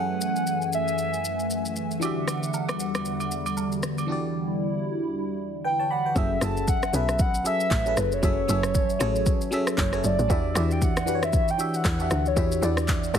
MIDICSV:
0, 0, Header, 1, 6, 480
1, 0, Start_track
1, 0, Tempo, 517241
1, 1875, Time_signature, 4, 2, 24, 8
1, 12239, End_track
2, 0, Start_track
2, 0, Title_t, "Soft synth lead"
2, 0, Program_c, 0, 80
2, 0, Note_on_c, 0, 78, 111
2, 643, Note_off_c, 0, 78, 0
2, 690, Note_on_c, 0, 76, 94
2, 1606, Note_off_c, 0, 76, 0
2, 5249, Note_on_c, 0, 79, 105
2, 5490, Note_on_c, 0, 78, 105
2, 5504, Note_off_c, 0, 79, 0
2, 5732, Note_on_c, 0, 76, 105
2, 5746, Note_off_c, 0, 78, 0
2, 5973, Note_on_c, 0, 81, 112
2, 5987, Note_off_c, 0, 76, 0
2, 6204, Note_off_c, 0, 81, 0
2, 6210, Note_on_c, 0, 78, 113
2, 6426, Note_off_c, 0, 78, 0
2, 6452, Note_on_c, 0, 76, 106
2, 6691, Note_on_c, 0, 78, 109
2, 6705, Note_off_c, 0, 76, 0
2, 6923, Note_off_c, 0, 78, 0
2, 6931, Note_on_c, 0, 76, 115
2, 7412, Note_on_c, 0, 71, 99
2, 7426, Note_off_c, 0, 76, 0
2, 7543, Note_off_c, 0, 71, 0
2, 7550, Note_on_c, 0, 73, 116
2, 8945, Note_off_c, 0, 73, 0
2, 9092, Note_on_c, 0, 73, 101
2, 9331, Note_on_c, 0, 74, 109
2, 9345, Note_off_c, 0, 73, 0
2, 9815, Note_on_c, 0, 76, 100
2, 9828, Note_off_c, 0, 74, 0
2, 9950, Note_on_c, 0, 79, 95
2, 9964, Note_off_c, 0, 76, 0
2, 10054, Note_on_c, 0, 78, 105
2, 10068, Note_off_c, 0, 79, 0
2, 10424, Note_off_c, 0, 78, 0
2, 10434, Note_on_c, 0, 76, 92
2, 10518, Note_off_c, 0, 76, 0
2, 10534, Note_on_c, 0, 76, 97
2, 10676, Note_on_c, 0, 79, 94
2, 10690, Note_off_c, 0, 76, 0
2, 10911, Note_on_c, 0, 78, 99
2, 10925, Note_off_c, 0, 79, 0
2, 11391, Note_on_c, 0, 73, 95
2, 11405, Note_off_c, 0, 78, 0
2, 11731, Note_on_c, 0, 74, 88
2, 11745, Note_off_c, 0, 73, 0
2, 12203, Note_off_c, 0, 74, 0
2, 12239, End_track
3, 0, Start_track
3, 0, Title_t, "FM electric piano"
3, 0, Program_c, 1, 5
3, 0, Control_c, 1, 64, 127
3, 0, Note_on_c, 1, 54, 64
3, 0, Note_on_c, 1, 61, 60
3, 0, Note_on_c, 1, 68, 61
3, 0, Note_on_c, 1, 69, 56
3, 0, Note_on_c, 1, 78, 72
3, 1825, Note_off_c, 1, 54, 0
3, 1832, Note_off_c, 1, 61, 0
3, 1839, Note_off_c, 1, 68, 0
3, 1846, Note_off_c, 1, 69, 0
3, 1852, Note_off_c, 1, 78, 0
3, 1852, Note_on_c, 1, 52, 74
3, 1864, Note_on_c, 1, 62, 71
3, 1878, Note_on_c, 1, 66, 73
3, 1887, Control_c, 1, 64, 0
3, 1892, Note_on_c, 1, 67, 70
3, 1905, Note_on_c, 1, 76, 85
3, 2061, Control_c, 1, 64, 127
3, 3746, Note_off_c, 1, 52, 0
3, 3753, Note_off_c, 1, 62, 0
3, 3759, Note_off_c, 1, 66, 0
3, 3766, Note_off_c, 1, 67, 0
3, 3772, Note_on_c, 1, 52, 77
3, 3773, Note_off_c, 1, 76, 0
3, 3784, Note_on_c, 1, 62, 74
3, 3798, Note_on_c, 1, 66, 68
3, 3812, Note_on_c, 1, 67, 72
3, 3825, Note_on_c, 1, 74, 86
3, 5221, Note_off_c, 1, 74, 0
3, 5238, Note_on_c, 1, 79, 60
3, 5244, Note_on_c, 1, 71, 53
3, 5369, Note_off_c, 1, 79, 0
3, 5372, Note_off_c, 1, 71, 0
3, 5377, Note_on_c, 1, 81, 69
3, 5383, Note_on_c, 1, 73, 60
3, 5430, Note_off_c, 1, 52, 0
3, 5436, Note_off_c, 1, 62, 0
3, 5443, Note_off_c, 1, 66, 0
3, 5450, Note_off_c, 1, 67, 0
3, 5471, Note_off_c, 1, 81, 0
3, 5475, Note_off_c, 1, 73, 0
3, 5480, Note_on_c, 1, 83, 70
3, 5485, Note_on_c, 1, 74, 56
3, 5610, Note_off_c, 1, 83, 0
3, 5612, Note_off_c, 1, 74, 0
3, 5621, Note_on_c, 1, 79, 59
3, 5626, Note_on_c, 1, 71, 53
3, 5707, Note_on_c, 1, 54, 78
3, 5714, Note_on_c, 1, 61, 72
3, 5721, Note_on_c, 1, 68, 72
3, 5727, Control_c, 1, 64, 0
3, 5727, Note_on_c, 1, 69, 72
3, 5734, Note_on_c, 1, 76, 91
3, 5846, Note_off_c, 1, 79, 0
3, 5849, Note_off_c, 1, 71, 0
3, 5911, Note_off_c, 1, 54, 0
3, 5913, Control_c, 1, 64, 127
3, 5915, Note_off_c, 1, 61, 0
3, 5918, Note_off_c, 1, 68, 0
3, 5921, Note_off_c, 1, 69, 0
3, 5924, Note_off_c, 1, 76, 0
3, 5945, Note_on_c, 1, 54, 76
3, 5952, Note_on_c, 1, 61, 74
3, 5960, Note_on_c, 1, 68, 76
3, 5965, Note_on_c, 1, 69, 74
3, 5973, Note_on_c, 1, 76, 90
3, 6350, Note_off_c, 1, 54, 0
3, 6353, Note_off_c, 1, 61, 0
3, 6357, Note_off_c, 1, 68, 0
3, 6360, Note_off_c, 1, 69, 0
3, 6363, Note_off_c, 1, 76, 0
3, 6427, Note_on_c, 1, 54, 81
3, 6434, Note_on_c, 1, 61, 73
3, 6442, Note_on_c, 1, 68, 72
3, 6448, Note_on_c, 1, 69, 70
3, 6455, Note_on_c, 1, 71, 92
3, 6831, Note_off_c, 1, 54, 0
3, 6834, Note_off_c, 1, 61, 0
3, 6838, Note_off_c, 1, 68, 0
3, 6841, Note_off_c, 1, 69, 0
3, 6844, Note_off_c, 1, 71, 0
3, 6906, Note_on_c, 1, 54, 76
3, 6912, Note_on_c, 1, 61, 71
3, 6920, Note_on_c, 1, 68, 72
3, 6925, Note_on_c, 1, 69, 68
3, 6933, Note_on_c, 1, 76, 89
3, 7206, Note_off_c, 1, 54, 0
3, 7209, Note_off_c, 1, 61, 0
3, 7213, Note_off_c, 1, 68, 0
3, 7216, Note_off_c, 1, 69, 0
3, 7220, Note_off_c, 1, 76, 0
3, 7286, Note_on_c, 1, 54, 77
3, 7293, Note_on_c, 1, 61, 70
3, 7299, Note_on_c, 1, 68, 71
3, 7306, Note_on_c, 1, 69, 71
3, 7312, Note_on_c, 1, 71, 85
3, 7570, Note_off_c, 1, 54, 0
3, 7574, Note_off_c, 1, 61, 0
3, 7577, Note_off_c, 1, 68, 0
3, 7580, Note_off_c, 1, 69, 0
3, 7584, Note_off_c, 1, 71, 0
3, 7626, Note_on_c, 1, 54, 84
3, 7634, Note_on_c, 1, 61, 72
3, 7640, Note_on_c, 1, 68, 76
3, 7646, Note_on_c, 1, 69, 73
3, 7653, Note_on_c, 1, 76, 90
3, 7830, Note_off_c, 1, 54, 0
3, 7834, Note_off_c, 1, 61, 0
3, 7837, Note_off_c, 1, 68, 0
3, 7840, Note_off_c, 1, 69, 0
3, 7844, Note_off_c, 1, 76, 0
3, 7866, Note_on_c, 1, 54, 80
3, 7872, Note_on_c, 1, 61, 74
3, 7879, Note_on_c, 1, 68, 72
3, 7886, Note_on_c, 1, 69, 75
3, 7892, Note_on_c, 1, 76, 89
3, 8270, Note_off_c, 1, 54, 0
3, 8273, Note_off_c, 1, 61, 0
3, 8276, Note_off_c, 1, 68, 0
3, 8280, Note_off_c, 1, 69, 0
3, 8283, Note_off_c, 1, 76, 0
3, 8345, Note_on_c, 1, 54, 100
3, 8352, Note_on_c, 1, 61, 86
3, 8359, Note_on_c, 1, 68, 88
3, 8365, Note_on_c, 1, 69, 89
3, 8373, Note_on_c, 1, 73, 100
3, 8750, Note_off_c, 1, 54, 0
3, 8753, Note_off_c, 1, 61, 0
3, 8756, Note_off_c, 1, 68, 0
3, 8760, Note_off_c, 1, 69, 0
3, 8763, Note_off_c, 1, 73, 0
3, 8823, Note_on_c, 1, 54, 92
3, 8830, Note_on_c, 1, 61, 84
3, 8838, Note_on_c, 1, 68, 86
3, 8843, Note_on_c, 1, 69, 84
3, 8851, Note_on_c, 1, 76, 101
3, 9125, Note_off_c, 1, 54, 0
3, 9128, Note_off_c, 1, 61, 0
3, 9132, Note_off_c, 1, 68, 0
3, 9135, Note_off_c, 1, 69, 0
3, 9139, Note_off_c, 1, 76, 0
3, 9203, Note_on_c, 1, 54, 77
3, 9209, Note_on_c, 1, 61, 72
3, 9216, Note_on_c, 1, 68, 72
3, 9224, Note_on_c, 1, 69, 71
3, 9230, Note_on_c, 1, 73, 84
3, 9489, Note_off_c, 1, 54, 0
3, 9492, Note_off_c, 1, 61, 0
3, 9496, Note_off_c, 1, 68, 0
3, 9499, Note_off_c, 1, 69, 0
3, 9502, Note_off_c, 1, 73, 0
3, 9542, Note_on_c, 1, 52, 81
3, 9548, Note_on_c, 1, 62, 70
3, 9555, Note_on_c, 1, 66, 73
3, 9561, Note_on_c, 1, 67, 73
3, 9568, Note_on_c, 1, 76, 90
3, 9569, Control_c, 1, 64, 0
3, 9722, Control_c, 1, 64, 127
3, 9748, Note_off_c, 1, 52, 0
3, 9751, Note_off_c, 1, 62, 0
3, 9755, Note_off_c, 1, 66, 0
3, 9758, Note_off_c, 1, 67, 0
3, 9761, Note_off_c, 1, 76, 0
3, 9783, Note_on_c, 1, 52, 79
3, 9790, Note_on_c, 1, 62, 75
3, 9796, Note_on_c, 1, 66, 71
3, 9803, Note_on_c, 1, 67, 75
3, 9810, Note_on_c, 1, 74, 89
3, 10188, Note_off_c, 1, 52, 0
3, 10192, Note_off_c, 1, 62, 0
3, 10195, Note_off_c, 1, 66, 0
3, 10199, Note_off_c, 1, 67, 0
3, 10202, Note_off_c, 1, 74, 0
3, 10260, Note_on_c, 1, 52, 80
3, 10267, Note_on_c, 1, 62, 76
3, 10275, Note_on_c, 1, 66, 73
3, 10281, Note_on_c, 1, 67, 72
3, 10288, Note_on_c, 1, 71, 70
3, 10346, Note_on_c, 1, 73, 84
3, 10349, Note_off_c, 1, 71, 0
3, 10667, Note_off_c, 1, 52, 0
3, 10671, Note_off_c, 1, 62, 0
3, 10674, Note_off_c, 1, 66, 0
3, 10678, Note_off_c, 1, 67, 0
3, 10710, Note_off_c, 1, 73, 0
3, 10742, Note_on_c, 1, 52, 76
3, 10748, Note_on_c, 1, 62, 70
3, 10755, Note_on_c, 1, 66, 71
3, 10763, Note_on_c, 1, 67, 72
3, 10769, Note_on_c, 1, 76, 91
3, 11044, Note_off_c, 1, 52, 0
3, 11048, Note_off_c, 1, 62, 0
3, 11051, Note_off_c, 1, 66, 0
3, 11055, Note_off_c, 1, 67, 0
3, 11058, Note_off_c, 1, 76, 0
3, 11124, Note_on_c, 1, 52, 76
3, 11132, Note_on_c, 1, 62, 71
3, 11137, Note_on_c, 1, 66, 71
3, 11145, Note_on_c, 1, 67, 68
3, 11151, Note_on_c, 1, 76, 84
3, 11410, Note_off_c, 1, 52, 0
3, 11413, Note_off_c, 1, 62, 0
3, 11416, Note_off_c, 1, 66, 0
3, 11420, Note_off_c, 1, 67, 0
3, 11423, Note_off_c, 1, 76, 0
3, 11465, Note_on_c, 1, 52, 78
3, 11472, Note_on_c, 1, 62, 72
3, 11479, Note_on_c, 1, 66, 76
3, 11485, Note_on_c, 1, 67, 72
3, 11492, Note_on_c, 1, 76, 90
3, 11670, Note_off_c, 1, 52, 0
3, 11673, Note_off_c, 1, 62, 0
3, 11677, Note_off_c, 1, 66, 0
3, 11680, Note_off_c, 1, 67, 0
3, 11683, Note_off_c, 1, 76, 0
3, 11706, Note_on_c, 1, 52, 80
3, 11712, Note_on_c, 1, 62, 71
3, 11719, Note_on_c, 1, 66, 73
3, 11726, Note_on_c, 1, 67, 74
3, 11732, Note_on_c, 1, 74, 89
3, 12110, Note_off_c, 1, 52, 0
3, 12113, Note_off_c, 1, 62, 0
3, 12117, Note_off_c, 1, 66, 0
3, 12120, Note_off_c, 1, 67, 0
3, 12123, Note_off_c, 1, 74, 0
3, 12188, Note_on_c, 1, 52, 78
3, 12194, Note_on_c, 1, 62, 75
3, 12201, Note_on_c, 1, 66, 75
3, 12206, Note_on_c, 1, 67, 72
3, 12239, Note_off_c, 1, 52, 0
3, 12239, Note_off_c, 1, 62, 0
3, 12239, Note_off_c, 1, 66, 0
3, 12239, Note_off_c, 1, 67, 0
3, 12239, End_track
4, 0, Start_track
4, 0, Title_t, "Analog synth pad"
4, 0, Program_c, 2, 89
4, 0, Note_on_c, 2, 42, 83
4, 0, Note_on_c, 2, 52, 72
4, 0, Note_on_c, 2, 57, 78
4, 0, Note_on_c, 2, 80, 94
4, 1838, Note_off_c, 2, 57, 0
4, 1839, Note_off_c, 2, 52, 0
4, 1839, Note_off_c, 2, 80, 0
4, 1840, Note_off_c, 2, 42, 0
4, 1876, Note_on_c, 2, 50, 75
4, 1877, Note_on_c, 2, 40, 85
4, 1877, Note_on_c, 2, 78, 90
4, 1878, Note_on_c, 2, 55, 76
4, 3777, Note_off_c, 2, 78, 0
4, 3793, Note_on_c, 2, 64, 92
4, 5679, Note_off_c, 2, 40, 0
4, 5679, Note_off_c, 2, 50, 0
4, 5680, Note_off_c, 2, 55, 0
4, 5695, Note_off_c, 2, 64, 0
4, 12239, End_track
5, 0, Start_track
5, 0, Title_t, "Log drum bass"
5, 0, Program_c, 3, 39
5, 5715, Note_on_c, 3, 30, 110
5, 5946, Note_off_c, 3, 30, 0
5, 5953, Note_on_c, 3, 30, 111
5, 6415, Note_off_c, 3, 30, 0
5, 6434, Note_on_c, 3, 35, 94
5, 6895, Note_off_c, 3, 35, 0
5, 7155, Note_on_c, 3, 33, 93
5, 7385, Note_off_c, 3, 33, 0
5, 7398, Note_on_c, 3, 30, 89
5, 7627, Note_off_c, 3, 30, 0
5, 7636, Note_on_c, 3, 30, 102
5, 7866, Note_off_c, 3, 30, 0
5, 7878, Note_on_c, 3, 30, 110
5, 8338, Note_off_c, 3, 30, 0
5, 8357, Note_on_c, 3, 33, 99
5, 8587, Note_off_c, 3, 33, 0
5, 9075, Note_on_c, 3, 30, 104
5, 9305, Note_off_c, 3, 30, 0
5, 9317, Note_on_c, 3, 30, 91
5, 9450, Note_off_c, 3, 30, 0
5, 9455, Note_on_c, 3, 33, 90
5, 9552, Note_off_c, 3, 33, 0
5, 9557, Note_on_c, 3, 40, 105
5, 9787, Note_off_c, 3, 40, 0
5, 9797, Note_on_c, 3, 40, 103
5, 10273, Note_on_c, 3, 42, 103
5, 10287, Note_off_c, 3, 40, 0
5, 10735, Note_off_c, 3, 42, 0
5, 10995, Note_on_c, 3, 40, 98
5, 11226, Note_off_c, 3, 40, 0
5, 11236, Note_on_c, 3, 38, 88
5, 11466, Note_off_c, 3, 38, 0
5, 11475, Note_on_c, 3, 40, 114
5, 11706, Note_off_c, 3, 40, 0
5, 11715, Note_on_c, 3, 40, 105
5, 12176, Note_off_c, 3, 40, 0
5, 12193, Note_on_c, 3, 42, 92
5, 12239, Note_off_c, 3, 42, 0
5, 12239, End_track
6, 0, Start_track
6, 0, Title_t, "Drums"
6, 196, Note_on_c, 9, 82, 94
6, 289, Note_off_c, 9, 82, 0
6, 334, Note_on_c, 9, 82, 54
6, 426, Note_off_c, 9, 82, 0
6, 435, Note_on_c, 9, 82, 78
6, 528, Note_off_c, 9, 82, 0
6, 572, Note_on_c, 9, 82, 47
6, 665, Note_off_c, 9, 82, 0
6, 675, Note_on_c, 9, 82, 103
6, 768, Note_off_c, 9, 82, 0
6, 816, Note_on_c, 9, 82, 51
6, 908, Note_off_c, 9, 82, 0
6, 911, Note_on_c, 9, 82, 70
6, 1004, Note_off_c, 9, 82, 0
6, 1055, Note_on_c, 9, 82, 49
6, 1148, Note_off_c, 9, 82, 0
6, 1156, Note_on_c, 9, 82, 90
6, 1249, Note_off_c, 9, 82, 0
6, 1294, Note_on_c, 9, 82, 55
6, 1387, Note_off_c, 9, 82, 0
6, 1395, Note_on_c, 9, 82, 79
6, 1488, Note_off_c, 9, 82, 0
6, 1534, Note_on_c, 9, 82, 49
6, 1627, Note_off_c, 9, 82, 0
6, 1633, Note_on_c, 9, 82, 73
6, 1726, Note_off_c, 9, 82, 0
6, 1772, Note_on_c, 9, 82, 45
6, 1865, Note_off_c, 9, 82, 0
6, 1874, Note_on_c, 9, 82, 74
6, 1880, Note_on_c, 9, 67, 73
6, 1967, Note_off_c, 9, 82, 0
6, 1972, Note_off_c, 9, 67, 0
6, 2112, Note_on_c, 9, 37, 85
6, 2114, Note_on_c, 9, 67, 66
6, 2117, Note_on_c, 9, 82, 92
6, 2205, Note_off_c, 9, 37, 0
6, 2206, Note_off_c, 9, 67, 0
6, 2209, Note_off_c, 9, 82, 0
6, 2255, Note_on_c, 9, 82, 52
6, 2348, Note_off_c, 9, 82, 0
6, 2354, Note_on_c, 9, 82, 81
6, 2355, Note_on_c, 9, 77, 67
6, 2447, Note_off_c, 9, 82, 0
6, 2448, Note_off_c, 9, 77, 0
6, 2492, Note_on_c, 9, 67, 79
6, 2494, Note_on_c, 9, 82, 49
6, 2497, Note_on_c, 9, 37, 91
6, 2585, Note_off_c, 9, 67, 0
6, 2587, Note_off_c, 9, 82, 0
6, 2590, Note_off_c, 9, 37, 0
6, 2595, Note_on_c, 9, 82, 99
6, 2688, Note_off_c, 9, 82, 0
6, 2736, Note_on_c, 9, 37, 92
6, 2736, Note_on_c, 9, 82, 53
6, 2737, Note_on_c, 9, 67, 73
6, 2829, Note_off_c, 9, 37, 0
6, 2829, Note_off_c, 9, 82, 0
6, 2830, Note_off_c, 9, 67, 0
6, 2832, Note_on_c, 9, 82, 71
6, 2925, Note_off_c, 9, 82, 0
6, 2972, Note_on_c, 9, 67, 64
6, 2973, Note_on_c, 9, 82, 52
6, 3065, Note_off_c, 9, 67, 0
6, 3066, Note_off_c, 9, 82, 0
6, 3075, Note_on_c, 9, 82, 88
6, 3168, Note_off_c, 9, 82, 0
6, 3212, Note_on_c, 9, 67, 76
6, 3213, Note_on_c, 9, 82, 56
6, 3304, Note_off_c, 9, 67, 0
6, 3305, Note_off_c, 9, 82, 0
6, 3312, Note_on_c, 9, 77, 65
6, 3314, Note_on_c, 9, 82, 80
6, 3405, Note_off_c, 9, 77, 0
6, 3407, Note_off_c, 9, 82, 0
6, 3452, Note_on_c, 9, 82, 47
6, 3545, Note_off_c, 9, 82, 0
6, 3553, Note_on_c, 9, 82, 75
6, 3555, Note_on_c, 9, 37, 91
6, 3646, Note_off_c, 9, 82, 0
6, 3648, Note_off_c, 9, 37, 0
6, 3693, Note_on_c, 9, 82, 47
6, 3696, Note_on_c, 9, 67, 62
6, 3785, Note_off_c, 9, 82, 0
6, 3789, Note_off_c, 9, 67, 0
6, 5715, Note_on_c, 9, 36, 110
6, 5716, Note_on_c, 9, 82, 79
6, 5808, Note_off_c, 9, 36, 0
6, 5808, Note_off_c, 9, 82, 0
6, 5952, Note_on_c, 9, 37, 100
6, 5957, Note_on_c, 9, 82, 103
6, 6045, Note_off_c, 9, 37, 0
6, 6049, Note_off_c, 9, 82, 0
6, 6096, Note_on_c, 9, 82, 60
6, 6189, Note_off_c, 9, 82, 0
6, 6196, Note_on_c, 9, 82, 88
6, 6197, Note_on_c, 9, 36, 99
6, 6289, Note_off_c, 9, 82, 0
6, 6290, Note_off_c, 9, 36, 0
6, 6335, Note_on_c, 9, 82, 52
6, 6338, Note_on_c, 9, 37, 95
6, 6428, Note_off_c, 9, 82, 0
6, 6430, Note_off_c, 9, 37, 0
6, 6437, Note_on_c, 9, 82, 114
6, 6529, Note_off_c, 9, 82, 0
6, 6577, Note_on_c, 9, 37, 93
6, 6577, Note_on_c, 9, 82, 58
6, 6669, Note_off_c, 9, 82, 0
6, 6670, Note_off_c, 9, 37, 0
6, 6671, Note_on_c, 9, 82, 79
6, 6675, Note_on_c, 9, 36, 121
6, 6764, Note_off_c, 9, 82, 0
6, 6768, Note_off_c, 9, 36, 0
6, 6815, Note_on_c, 9, 82, 52
6, 6908, Note_off_c, 9, 82, 0
6, 6917, Note_on_c, 9, 82, 95
6, 7010, Note_off_c, 9, 82, 0
6, 7055, Note_on_c, 9, 82, 61
6, 7148, Note_off_c, 9, 82, 0
6, 7155, Note_on_c, 9, 36, 102
6, 7155, Note_on_c, 9, 39, 97
6, 7156, Note_on_c, 9, 82, 87
6, 7247, Note_off_c, 9, 36, 0
6, 7248, Note_off_c, 9, 39, 0
6, 7249, Note_off_c, 9, 82, 0
6, 7294, Note_on_c, 9, 82, 53
6, 7387, Note_off_c, 9, 82, 0
6, 7395, Note_on_c, 9, 82, 80
6, 7397, Note_on_c, 9, 37, 103
6, 7488, Note_off_c, 9, 82, 0
6, 7490, Note_off_c, 9, 37, 0
6, 7535, Note_on_c, 9, 82, 48
6, 7628, Note_off_c, 9, 82, 0
6, 7636, Note_on_c, 9, 36, 111
6, 7636, Note_on_c, 9, 82, 80
6, 7729, Note_off_c, 9, 36, 0
6, 7729, Note_off_c, 9, 82, 0
6, 7878, Note_on_c, 9, 82, 101
6, 7971, Note_off_c, 9, 82, 0
6, 8012, Note_on_c, 9, 37, 102
6, 8016, Note_on_c, 9, 82, 60
6, 8105, Note_off_c, 9, 37, 0
6, 8108, Note_off_c, 9, 82, 0
6, 8116, Note_on_c, 9, 82, 85
6, 8118, Note_on_c, 9, 36, 100
6, 8209, Note_off_c, 9, 82, 0
6, 8210, Note_off_c, 9, 36, 0
6, 8255, Note_on_c, 9, 82, 49
6, 8348, Note_off_c, 9, 82, 0
6, 8356, Note_on_c, 9, 82, 114
6, 8358, Note_on_c, 9, 37, 99
6, 8449, Note_off_c, 9, 82, 0
6, 8451, Note_off_c, 9, 37, 0
6, 8497, Note_on_c, 9, 82, 57
6, 8590, Note_off_c, 9, 82, 0
6, 8593, Note_on_c, 9, 82, 78
6, 8596, Note_on_c, 9, 36, 126
6, 8686, Note_off_c, 9, 82, 0
6, 8689, Note_off_c, 9, 36, 0
6, 8734, Note_on_c, 9, 82, 54
6, 8827, Note_off_c, 9, 82, 0
6, 8836, Note_on_c, 9, 82, 95
6, 8929, Note_off_c, 9, 82, 0
6, 8974, Note_on_c, 9, 37, 105
6, 8975, Note_on_c, 9, 82, 60
6, 9067, Note_off_c, 9, 37, 0
6, 9068, Note_off_c, 9, 82, 0
6, 9075, Note_on_c, 9, 36, 101
6, 9075, Note_on_c, 9, 39, 102
6, 9076, Note_on_c, 9, 82, 88
6, 9168, Note_off_c, 9, 36, 0
6, 9168, Note_off_c, 9, 39, 0
6, 9169, Note_off_c, 9, 82, 0
6, 9213, Note_on_c, 9, 37, 89
6, 9216, Note_on_c, 9, 82, 50
6, 9305, Note_off_c, 9, 37, 0
6, 9308, Note_off_c, 9, 82, 0
6, 9316, Note_on_c, 9, 82, 78
6, 9409, Note_off_c, 9, 82, 0
6, 9457, Note_on_c, 9, 82, 49
6, 9550, Note_off_c, 9, 82, 0
6, 9557, Note_on_c, 9, 36, 118
6, 9558, Note_on_c, 9, 82, 81
6, 9649, Note_off_c, 9, 36, 0
6, 9651, Note_off_c, 9, 82, 0
6, 9794, Note_on_c, 9, 37, 99
6, 9799, Note_on_c, 9, 82, 105
6, 9887, Note_off_c, 9, 37, 0
6, 9892, Note_off_c, 9, 82, 0
6, 9938, Note_on_c, 9, 82, 60
6, 10031, Note_off_c, 9, 82, 0
6, 10037, Note_on_c, 9, 82, 86
6, 10038, Note_on_c, 9, 36, 102
6, 10130, Note_off_c, 9, 82, 0
6, 10131, Note_off_c, 9, 36, 0
6, 10176, Note_on_c, 9, 82, 54
6, 10179, Note_on_c, 9, 37, 98
6, 10269, Note_off_c, 9, 82, 0
6, 10272, Note_off_c, 9, 37, 0
6, 10278, Note_on_c, 9, 82, 115
6, 10371, Note_off_c, 9, 82, 0
6, 10418, Note_on_c, 9, 82, 58
6, 10419, Note_on_c, 9, 37, 97
6, 10511, Note_off_c, 9, 37, 0
6, 10511, Note_off_c, 9, 82, 0
6, 10513, Note_on_c, 9, 82, 79
6, 10516, Note_on_c, 9, 36, 126
6, 10606, Note_off_c, 9, 82, 0
6, 10609, Note_off_c, 9, 36, 0
6, 10655, Note_on_c, 9, 82, 53
6, 10747, Note_off_c, 9, 82, 0
6, 10758, Note_on_c, 9, 82, 100
6, 10851, Note_off_c, 9, 82, 0
6, 10895, Note_on_c, 9, 82, 61
6, 10988, Note_off_c, 9, 82, 0
6, 10994, Note_on_c, 9, 36, 103
6, 10995, Note_on_c, 9, 39, 105
6, 10996, Note_on_c, 9, 82, 86
6, 11087, Note_off_c, 9, 36, 0
6, 11088, Note_off_c, 9, 39, 0
6, 11089, Note_off_c, 9, 82, 0
6, 11134, Note_on_c, 9, 82, 53
6, 11227, Note_off_c, 9, 82, 0
6, 11234, Note_on_c, 9, 82, 77
6, 11236, Note_on_c, 9, 37, 104
6, 11327, Note_off_c, 9, 82, 0
6, 11329, Note_off_c, 9, 37, 0
6, 11374, Note_on_c, 9, 82, 47
6, 11467, Note_off_c, 9, 82, 0
6, 11476, Note_on_c, 9, 36, 110
6, 11477, Note_on_c, 9, 82, 84
6, 11568, Note_off_c, 9, 36, 0
6, 11570, Note_off_c, 9, 82, 0
6, 11616, Note_on_c, 9, 82, 67
6, 11709, Note_off_c, 9, 82, 0
6, 11717, Note_on_c, 9, 82, 99
6, 11810, Note_off_c, 9, 82, 0
6, 11851, Note_on_c, 9, 37, 101
6, 11855, Note_on_c, 9, 82, 57
6, 11944, Note_off_c, 9, 37, 0
6, 11948, Note_off_c, 9, 82, 0
6, 11955, Note_on_c, 9, 39, 97
6, 11957, Note_on_c, 9, 36, 98
6, 11957, Note_on_c, 9, 82, 87
6, 12047, Note_off_c, 9, 39, 0
6, 12050, Note_off_c, 9, 36, 0
6, 12050, Note_off_c, 9, 82, 0
6, 12096, Note_on_c, 9, 82, 50
6, 12189, Note_off_c, 9, 82, 0
6, 12198, Note_on_c, 9, 82, 114
6, 12200, Note_on_c, 9, 37, 99
6, 12239, Note_off_c, 9, 37, 0
6, 12239, Note_off_c, 9, 82, 0
6, 12239, End_track
0, 0, End_of_file